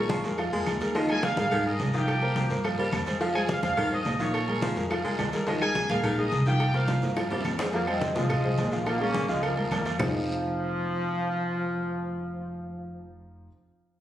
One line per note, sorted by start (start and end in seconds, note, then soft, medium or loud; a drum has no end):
0.00 0.19 A#1 loud
0.00 0.19 G#3 medium
0.00 0.19 G#4 medium
0.00 0.20 A#4 medium
0.00 0.23 C#5 medium
0.00 0.25 C#6 medium
0.10 0.32 F3 medium
0.10 cowbell medium
0.10 high conga loud
0.10 short guiro medium
0.24 0.50 F2 medium
0.24 0.36 G#3 medium
0.24 0.36 G#4 medium
0.24 0.36 A#4 medium
0.24 cowbell medium
0.24 short guiro medium
0.38 0.50 F3 medium
0.38 0.50 F4 medium
0.38 0.50 F5 medium
0.38 cowbell loud
0.38 high conga soft
0.38 low agogo loud
0.38 long guiro medium
0.38 claves medium
0.52 0.66 F2 medium
0.52 0.75 G#3 medium
0.52 0.76 G#3 medium
0.52 0.76 G#4 medium
0.52 0.76 A#4 medium
0.52 high conga soft
0.52 low agogo medium
0.66 1.32 D#2 loud
0.66 cowbell medium
0.66 high conga medium
0.66 low agogo loud
0.66 short guiro medium
0.66 claves medium
0.81 0.92 G#3 medium
0.81 0.93 G#4 medium
0.81 0.93 A#4 medium
0.81 cowbell medium
0.81 high conga soft
0.81 low agogo medium
0.81 short guiro medium
0.95 1.06 D#3 medium
0.95 1.27 F3 medium
0.95 1.07 D#4 medium
0.95 1.07 D#5 medium
0.95 cowbell loud
0.95 high conga soft
0.95 low agogo medium
0.95 long guiro medium
1.09 1.32 G#3 medium
1.09 1.32 G#4 medium
1.09 1.23 G#4 medium
1.09 1.33 A#4 medium
1.09 1.23 G#5 loud
1.09 high conga soft
1.09 low agogo loud
1.09 claves medium
1.23 1.38 F5 loud
1.23 cowbell medium
1.23 high conga loud
1.23 short guiro medium
1.37 1.77 G#2 loud
1.37 1.61 G#3 medium
1.37 1.61 G#4 medium
1.37 1.61 A#4 medium
1.37 1.64 F5 loud
1.37 cowbell medium
1.37 high conga loud
1.37 low agogo medium
1.37 short guiro medium
1.51 1.74 D#3 loud
1.51 cowbell loud
1.51 high conga soft
1.51 low conga medium
1.51 low agogo loud
1.51 long guiro medium
1.51 claves medium
1.66 1.89 G#3 medium
1.66 1.89 G#4 medium
1.66 1.89 A#4 medium
1.66 1.93 D#5 medium
1.66 1.93 D#6 medium
1.66 high conga soft
1.80 2.45 C2 loud
1.80 cowbell medium
1.80 high conga medium
1.80 low timbale medium
1.80 low agogo medium
1.80 short guiro medium
1.93 2.16 D#3 medium
1.93 2.17 F3 medium
1.93 2.17 F4 medium
1.93 2.51 G4 medium
1.93 2.18 F5 medium
1.93 2.51 G5 loud
1.93 cowbell medium
1.93 short guiro medium
2.08 cowbell loud
2.08 high conga soft
2.08 low agogo loud
2.08 long guiro medium
2.08 claves medium
2.22 2.45 A#3 medium
2.22 2.45 A#4 medium
2.22 2.46 C5 medium
2.22 high conga soft
2.22 low agogo loud
2.36 2.58 F3 medium
2.36 cowbell medium
2.36 high conga medium
2.36 short guiro medium
2.50 2.76 G2 medium
2.50 2.62 A#3 medium
2.50 2.62 A#4 medium
2.50 2.62 C5 medium
2.50 cowbell medium
2.50 short guiro medium
2.64 2.76 F3 medium
2.64 2.76 F4 medium
2.64 2.76 F5 medium
2.64 cowbell loud
2.64 high conga soft
2.64 low agogo loud
2.64 long guiro medium
2.64 claves medium
2.78 2.91 G2 medium
2.78 3.01 G3 medium
2.78 3.02 A#3 medium
2.78 3.02 A#4 medium
2.78 3.02 C5 medium
2.78 high conga soft
2.78 low agogo medium
2.92 3.58 F2 medium
2.92 cowbell medium
2.92 high conga medium
2.92 low agogo loud
2.92 short guiro medium
2.92 claves medium
3.06 3.19 G#3 medium
3.06 3.19 G#4 medium
3.06 3.19 C5 medium
3.06 cowbell medium
3.06 low agogo medium
3.06 short guiro medium
3.20 3.32 F3 medium
3.20 3.52 F3 medium
3.20 3.32 F4 medium
3.20 3.33 F5 medium
3.20 cowbell loud
3.20 high conga soft
3.20 low agogo medium
3.20 long guiro medium
3.35 3.58 G#3 medium
3.35 3.58 G#4 medium
3.35 3.43 G#4 medium
3.35 3.58 C5 medium
3.35 3.42 G#5 medium
3.35 high conga soft
3.35 low agogo loud
3.35 claves medium
3.49 3.63 F5 medium
3.49 cowbell medium
3.49 high conga loud
3.49 short guiro medium
3.63 4.02 F2 loud
3.63 3.86 G#3 medium
3.63 3.86 G#4 medium
3.63 3.87 C5 medium
3.63 3.90 F5 loud
3.63 cowbell medium
3.63 high conga medium
3.63 low agogo medium
3.63 short guiro medium
3.77 4.00 D#3 medium
3.77 cowbell loud
3.77 high conga soft
3.77 low conga medium
3.77 low agogo loud
3.77 long guiro medium
3.77 claves medium
3.91 4.15 G#3 medium
3.91 4.15 G#4 medium
3.91 4.15 C5 medium
3.91 4.18 D#5 loud
3.91 4.19 D#6 medium
3.91 high conga soft
4.05 4.71 A#1 loud
4.05 cowbell medium
4.05 high conga medium
4.05 low timbale medium
4.05 low agogo medium
4.05 short guiro medium
4.19 4.42 D#3 medium
4.19 4.43 F3 loud
4.19 4.43 F4 medium
4.19 4.73 C#5 medium
4.19 4.43 F5 medium
4.19 4.73 C#6 medium
4.19 cowbell medium
4.19 high conga medium
4.19 short guiro medium
4.34 cowbell loud
4.34 high conga soft
4.34 low agogo loud
4.34 long guiro medium
4.34 claves medium
4.48 4.71 G#3 medium
4.48 4.72 G#4 medium
4.48 4.72 A#4 medium
4.48 high conga soft
4.48 low agogo medium
4.62 4.85 F3 medium
4.62 cowbell medium
4.62 high conga loud
4.62 short guiro medium
4.76 5.03 F2 loud
4.76 4.88 G#3 medium
4.76 4.88 G#4 medium
4.76 4.88 A#4 medium
4.76 cowbell medium
4.76 short guiro medium
4.90 5.02 F3 medium
4.90 5.03 F4 medium
4.90 5.03 F5 medium
4.90 cowbell loud
4.90 high conga soft
4.90 low agogo loud
4.90 long guiro medium
4.90 claves medium
5.04 5.18 F2 medium
5.04 5.27 G#3 medium
5.04 5.28 G#3 medium
5.04 5.28 G#4 medium
5.04 5.28 A#4 medium
5.04 high conga soft
5.04 low agogo medium
5.19 5.84 D#2 medium
5.19 cowbell medium
5.19 high conga medium
5.19 low timbale medium
5.19 low agogo loud
5.19 short guiro medium
5.19 claves medium
5.33 5.45 G#3 medium
5.33 5.45 G#4 medium
5.33 5.45 A#4 medium
5.33 cowbell medium
5.33 high conga soft
5.33 low agogo medium
5.33 short guiro medium
5.47 5.59 D#3 medium
5.47 5.79 F3 medium
5.47 5.59 D#4 medium
5.47 5.59 D#5 medium
5.47 cowbell loud
5.47 high conga soft
5.47 low agogo medium
5.47 long guiro medium
5.61 5.85 G#3 medium
5.61 5.85 G#4 medium
5.61 5.88 G#4 medium
5.61 5.85 A#4 medium
5.61 5.88 G#5 loud
5.61 high conga soft
5.61 low agogo loud
5.61 claves medium
5.75 cowbell medium
5.75 high conga loud
5.75 short guiro medium
5.89 6.29 A#1 loud
5.89 6.13 G#3 medium
5.89 6.14 G#4 medium
5.89 6.14 A#4 medium
5.89 5.97 F5 loud
5.89 cowbell medium
5.89 high conga medium
5.89 low agogo medium
5.89 short guiro medium
6.03 6.26 D#3 medium
6.03 6.18 F5 medium
6.03 cowbell loud
6.03 high conga soft
6.03 low conga medium
6.03 low agogo loud
6.03 long guiro medium
6.03 claves medium
6.18 6.41 G#3 medium
6.18 6.41 G#4 medium
6.18 6.42 A#4 medium
6.18 6.44 D#5 medium
6.18 6.44 D#6 medium
6.18 high conga soft
6.32 6.97 C2 loud
6.32 cowbell medium
6.32 high conga medium
6.32 low agogo medium
6.32 short guiro medium
6.46 6.69 D#3 medium
6.46 6.70 F3 medium
6.46 6.70 F4 medium
6.46 6.73 G4 medium
6.46 6.70 F5 medium
6.46 6.73 G5 loud
6.46 cowbell medium
6.46 short guiro medium
6.60 cowbell loud
6.60 high bongo medium
6.60 high conga soft
6.60 low agogo loud
6.60 long guiro medium
6.60 claves medium
6.74 6.98 A#3 medium
6.74 6.98 A#4 medium
6.74 6.98 C5 medium
6.74 7.14 F5 medium
6.74 high bongo loud
6.74 high conga soft
6.74 low agogo loud
6.88 7.11 F3 medium
6.88 cowbell medium
6.88 high conga loud
6.88 short guiro medium
7.02 7.29 G2 loud
7.02 7.14 A#3 medium
7.02 7.15 A#4 medium
7.02 7.15 C5 medium
7.02 cowbell medium
7.02 low bongo medium
7.02 short guiro medium
7.16 7.29 F3 medium
7.16 7.29 F4 medium
7.16 7.29 F5 medium
7.16 cowbell loud
7.16 low bongo medium
7.16 high conga soft
7.16 low agogo loud
7.16 long guiro medium
7.16 claves medium
7.30 7.44 G2 medium
7.30 7.53 G3 medium
7.30 7.54 A#3 medium
7.30 7.55 A#4 medium
7.30 7.55 C5 medium
7.30 low bongo medium
7.30 high conga soft
7.30 high timbale loud
7.30 low agogo medium
7.41 high timbale loud
7.45 8.10 F2 loud
7.45 cowbell medium
7.45 high conga medium
7.45 low agogo loud
7.45 short guiro medium
7.45 claves medium
7.59 7.71 G#3 medium
7.59 7.71 G#4 medium
7.59 7.72 C5 medium
7.59 cowbell medium
7.59 low bongo loud
7.59 high conga soft
7.59 low timbale medium
7.59 low agogo medium
7.59 short guiro medium
7.73 7.85 F3 medium
7.73 7.87 F3 medium
7.73 7.87 A#3 loud
7.73 7.86 F4 medium
7.73 7.86 F5 medium
7.73 cowbell loud
7.73 high conga soft
7.73 low agogo medium
7.73 long guiro medium
7.87 8.11 G#3 medium
7.87 8.14 G#3 medium
7.87 8.16 C4 medium
7.87 8.11 G#4 medium
7.87 8.11 C5 medium
7.87 high conga soft
7.87 low agogo loud
7.87 claves medium
8.01 cowbell medium
8.01 high conga loud
8.01 short guiro medium
8.16 8.55 C2 medium
8.16 8.39 F3 loud
8.16 8.71 F3 medium
8.16 8.71 G#3 loud
8.16 8.39 F4 medium
8.16 8.39 F5 medium
8.16 cowbell medium
8.16 high conga medium
8.16 low agogo medium
8.16 short guiro medium
8.30 cowbell loud
8.30 high conga soft
8.30 low conga medium
8.30 low agogo loud
8.30 long guiro medium
8.30 claves medium
8.44 8.56 G#3 medium
8.44 8.56 G#4 medium
8.44 8.56 C5 medium
8.44 high conga soft
8.58 9.24 A#1 loud
8.58 8.70 G#3 medium
8.58 8.70 G#4 medium
8.58 8.70 C5 medium
8.58 cowbell medium
8.58 high conga medium
8.58 low timbale medium
8.58 low agogo medium
8.58 short guiro medium
8.72 8.84 F3 medium
8.72 8.86 F3 medium
8.72 8.86 G#3 medium
8.72 8.84 F4 medium
8.72 8.84 F5 medium
8.72 cowbell medium
8.72 high conga medium
8.72 short guiro medium
8.86 8.98 F3 medium
8.86 9.01 F3 medium
8.86 9.00 A#3 loud
8.86 8.98 F4 medium
8.86 8.99 F5 medium
8.86 cowbell loud
8.86 high conga soft
8.86 low agogo loud
8.86 long guiro medium
8.86 claves medium
9.00 9.24 G#3 medium
9.00 9.29 A#3 medium
9.00 9.29 C#4 loud
9.00 9.24 G#4 medium
9.00 9.24 A#4 medium
9.00 high conga soft
9.00 low agogo medium
9.14 cowbell medium
9.14 high conga loud
9.14 short guiro medium
9.28 9.55 C#2 medium
9.28 9.52 F3 medium
9.28 9.43 F3 medium
9.28 9.42 G#3 loud
9.28 9.52 F4 medium
9.28 9.52 F5 medium
9.28 cowbell medium
9.28 short guiro medium
9.43 9.57 F3 medium
9.43 9.57 A#3 medium
9.43 cowbell loud
9.43 high conga soft
9.43 low agogo loud
9.43 long guiro medium
9.43 claves medium
9.57 9.71 D#2 medium
9.57 9.71 F3 medium
9.57 9.80 G#3 medium
9.57 9.72 G#3 medium
9.57 9.80 G#4 medium
9.57 9.81 A#4 medium
9.57 high conga soft
9.57 low agogo medium
9.71 9.96 F2 medium
9.71 9.92 F3 medium
9.71 9.92 A#3 medium
9.71 cowbell medium
9.71 high conga medium
9.71 low timbale medium
9.71 low agogo loud
9.71 short guiro medium
9.71 claves medium
9.85 9.97 F3 medium
9.85 9.97 F4 medium
9.85 9.97 F5 medium
9.85 cowbell medium
9.85 high conga soft
9.85 low agogo medium
9.85 short guiro medium
9.99 13.47 F1 medium
9.99 13.46 F3 medium
9.99 13.02 F3 loud
9.99 13.47 C4 medium
9.99 13.47 D#4 medium
9.99 13.47 F4 medium
9.99 13.47 G#4 medium
9.99 13.48 C5 medium
9.99 low bongo loud
9.99 low conga loud
9.99 low timbale loud
9.99 long guiro loud
9.99 claves loud